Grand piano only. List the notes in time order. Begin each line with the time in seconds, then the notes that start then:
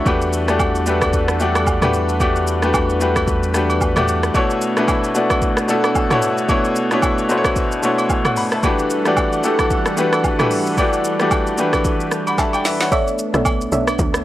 0.05 A3 D4 F#4 G4 B4
0.48 A3 D4 F#4 G4 D5
0.86 A3 D4 F#4 G4 B4
1.39 A3 D4 F#4 G4 D5
1.82 A3 D4 F#4 G4 B4
2.20 A3 D4 F#4 G4 D5
2.62 A3 D4 F#4 G4 B4
3.00 A3 D4 F#4 G4 B4
3.54 A3 D4 F#4 G4 B4
3.96 A3 D4 F#4 G4 D5
4.34 B2 A3 D4 E4 F#4 C#5
4.76 B2 A3 D4 E4 F#4 B4
5.14 B2 A3 D4 E4 F#4 D5
5.68 B2 A3 D4 E4 F#4 A4
6.10 B2 A3 D4 E4 F#4 C#5
6.48 B2 A3 D4 E4 F#4 C#5
6.91 B2 A3 D4 E4 F#4 C#5
7.29 B2 A3 D4 E4 F#4 C5
7.38 C#5
7.82 B2 A3 D4 E4 F#4 C#5
8.26 C#5 F#5
8.37 F#5 B5
8.53 E5 A5
8.63 E3 A3 D4 F#4 G4 B4
9.05 E3 A3 D4 F#4 G4 D5
9.43 E3 A3 D4 F#4 G4 A4
9.97 E3 A3 D4 F#4 G4 B4
10.39 E3 A3 D4 F#4 G4 B4
10.77 E3 A3 D4 F#4 G4 D5
11.19 E3 A3 D4 F#4 G4 D5
11.57 E3 A3 D4 F#4 G4 B4
12.28 F#5 B5
12.39 E5 A5
12.54 D5 G5
12.65 B4 E5
12.81 C#5 F#5